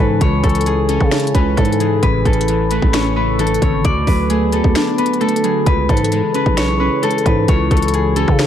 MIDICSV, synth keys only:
0, 0, Header, 1, 2, 480
1, 0, Start_track
1, 0, Tempo, 454545
1, 222, Time_signature, 4, 2, 24, 8
1, 8941, End_track
2, 0, Start_track
2, 0, Title_t, "Synth keys"
2, 0, Program_c, 0, 88
2, 0, Control_c, 0, 64, 127
2, 0, Note_on_c, 0, 49, 84
2, 0, Note_on_c, 0, 52, 79
2, 0, Note_on_c, 0, 56, 88
2, 0, Note_on_c, 0, 61, 83
2, 0, Note_on_c, 0, 73, 90
2, 218, Note_off_c, 0, 49, 0
2, 218, Note_on_c, 0, 49, 91
2, 450, Note_off_c, 0, 52, 0
2, 460, Note_off_c, 0, 73, 0
2, 463, Note_on_c, 0, 52, 79
2, 703, Note_off_c, 0, 61, 0
2, 941, Note_off_c, 0, 56, 0
2, 942, Note_on_c, 0, 61, 88
2, 1172, Note_on_c, 0, 73, 96
2, 1412, Note_off_c, 0, 61, 0
2, 1420, Note_off_c, 0, 49, 0
2, 1425, Note_on_c, 0, 61, 90
2, 1662, Note_off_c, 0, 52, 0
2, 1663, Note_on_c, 0, 56, 78
2, 1902, Note_on_c, 0, 52, 78
2, 2137, Note_off_c, 0, 73, 0
2, 2137, Note_on_c, 0, 45, 96
2, 2142, Note_off_c, 0, 52, 0
2, 2142, Note_off_c, 0, 56, 0
2, 2143, Note_off_c, 0, 61, 0
2, 2156, Control_c, 0, 64, 0
2, 2341, Control_c, 0, 64, 127
2, 2383, Note_on_c, 0, 49, 89
2, 2630, Note_on_c, 0, 52, 87
2, 2863, Note_on_c, 0, 57, 92
2, 3101, Note_on_c, 0, 61, 99
2, 3329, Note_off_c, 0, 57, 0
2, 3339, Note_off_c, 0, 45, 0
2, 3342, Note_on_c, 0, 57, 90
2, 3568, Note_off_c, 0, 52, 0
2, 3580, Note_on_c, 0, 52, 87
2, 3583, Note_off_c, 0, 49, 0
2, 3824, Note_on_c, 0, 49, 81
2, 4061, Note_off_c, 0, 52, 0
2, 4061, Note_off_c, 0, 61, 0
2, 4062, Note_off_c, 0, 57, 0
2, 4063, Note_off_c, 0, 49, 0
2, 4065, Note_on_c, 0, 50, 94
2, 4076, Control_c, 0, 64, 0
2, 4235, Control_c, 0, 64, 127
2, 4300, Note_on_c, 0, 54, 79
2, 4546, Note_on_c, 0, 57, 88
2, 4779, Note_on_c, 0, 59, 86
2, 5029, Note_on_c, 0, 62, 93
2, 5253, Note_off_c, 0, 59, 0
2, 5263, Note_off_c, 0, 50, 0
2, 5266, Note_on_c, 0, 59, 83
2, 5490, Note_off_c, 0, 57, 0
2, 5501, Note_off_c, 0, 54, 0
2, 5502, Note_on_c, 0, 57, 86
2, 5746, Note_on_c, 0, 54, 78
2, 5981, Note_on_c, 0, 49, 84
2, 5982, Note_off_c, 0, 57, 0
2, 5984, Note_off_c, 0, 54, 0
2, 5984, Note_off_c, 0, 59, 0
2, 5986, Note_off_c, 0, 62, 0
2, 5995, Control_c, 0, 64, 0
2, 6177, Control_c, 0, 64, 127
2, 6224, Note_on_c, 0, 52, 81
2, 6465, Note_on_c, 0, 56, 89
2, 6699, Note_on_c, 0, 61, 85
2, 6941, Note_on_c, 0, 73, 90
2, 7173, Note_off_c, 0, 61, 0
2, 7181, Note_off_c, 0, 49, 0
2, 7185, Note_on_c, 0, 61, 85
2, 7409, Note_off_c, 0, 56, 0
2, 7422, Note_on_c, 0, 56, 88
2, 7423, Note_off_c, 0, 52, 0
2, 7664, Note_on_c, 0, 52, 75
2, 7899, Note_on_c, 0, 49, 91
2, 8131, Note_off_c, 0, 52, 0
2, 8142, Note_off_c, 0, 73, 0
2, 8144, Note_on_c, 0, 52, 79
2, 8384, Note_off_c, 0, 61, 0
2, 8622, Note_off_c, 0, 56, 0
2, 8622, Note_on_c, 0, 61, 93
2, 8854, Note_on_c, 0, 73, 95
2, 8941, Note_off_c, 0, 49, 0
2, 8941, Note_off_c, 0, 52, 0
2, 8941, Note_off_c, 0, 61, 0
2, 8941, Note_off_c, 0, 73, 0
2, 8941, End_track
0, 0, End_of_file